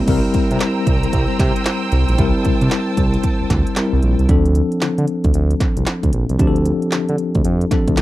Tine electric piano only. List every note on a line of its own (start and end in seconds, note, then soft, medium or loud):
0.00 0.09 E4 loud
0.07 2.14 G3 medium
0.07 2.14 C4 medium
0.07 2.15 E4 medium
0.07 2.15 A#4 medium
2.18 3.73 G3 medium
2.18 3.73 C4 medium
2.18 3.74 E4 medium
2.18 3.74 A#4 medium
3.77 4.29 G3 medium
3.77 4.28 C4 medium
3.77 4.30 E4 medium
3.77 4.30 A#4 medium
4.29 6.35 F3 medium
4.29 6.36 C4 medium
4.29 6.36 D4 medium
4.29 6.36 A4 medium
6.39 7.68 F3 medium
6.39 7.68 C4 medium
6.39 7.69 D4 medium
6.39 6.48 G4 medium
6.47 7.71 A4 medium
7.71 8.02 F3 medium
7.71 8.02 C4 medium
7.71 8.02 D4 medium
7.71 8.02 A4 medium